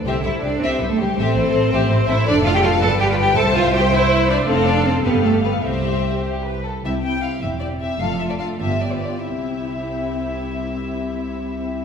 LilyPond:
<<
  \new Staff \with { instrumentName = "Violin section" } { \time 6/8 \key c \major \tempo 4. = 104 c''8 e''8 d''8 c''8 b'16 a'16 g'8 | c''2~ c''8 e''8 | d''8 f''16 g''16 f''8 a''8 g''16 f''16 g''8 | a''8 f''8 g''8 e''4 d''8 |
c''8 d''8 c''8 b'8 a'8 b'8 | c''4. r4. | e''8 g''8 f''8 e''8 d''8 e''8 | f''8 e''16 d''16 f''8 e''8 d''16 b'16 d''8 |
e''2.~ | e''2. | }
  \new Staff \with { instrumentName = "Violin section" } { \time 6/8 \key c \major <g' e''>8 <e' c''>8 <c' g'>8 <g' e''>8 <e' c''>8 <c' g'>8 | <g' e''>8 <e' c''>8 <c' a'>8 <g' e''>8 <e' c''>8 <c' a'>8 | <a' d''>4. <b' d''>4. | <c'' e''>4. <c'' e''>4. |
<a' f''>4. <g' f''>4. | <g' e''>4. g'8 b'8 a'8 | <e' g'>8 <e' g'>8 <e' g'>8 g'8 g'8 g'8 | <f' a'>8 <f' a'>8 <f' a'>8 <f' g'>8 <f' g'>8 <f' g'>8 |
<e' g'>2.~ | <e' g'>2. | }
  \new Staff \with { instrumentName = "Viola section" } { \time 6/8 \key c \major a'4. g'4. | a'4. c''4. | a'4. b'4. | c''2. |
a'2. | g'2~ g'16 r8. | <c' e'>8 <c' e'>8 <c' e'>8 <c' e'>8 <c' e'>8 <c' e'>8 | <a d'>8 <a d'>8 <a d'>8 <b d'>8 <b d'>8 <b d'>8 |
<c' e'>2.~ | <c' e'>2. | }
  \new Staff \with { instrumentName = "Cello section" } { \time 6/8 \key c \major c'8 e'8 d'8 c'8 b16 a16 g8 | c'2~ c'8 e'8 | d'8 f'16 g'16 f'8 a'8 g'16 f'16 g'8 | a'8 f'8 g'8 e'4 d'8 |
c'8 d'8 c'8 b8 a8 b8 | c'4. r4. | c,4. e,4. | f,4. g,4. |
c2.~ | c2. | }
  \new Staff \with { instrumentName = "Double bass section" } { \clef bass \time 6/8 \key c \major c,8 c,8 c,8 c,8 c,8 c,8 | a,,8 a,,8 a,,8 a,,8 a,,8 a,,8 | f,,4. g,,4. | c,2. |
f,,4. g,,4. | c,2~ c,8 r8 | c,4 r8 e,,4 r8 | f,,4 r8 g,,4 r8 |
c,2.~ | c,2. | }
>>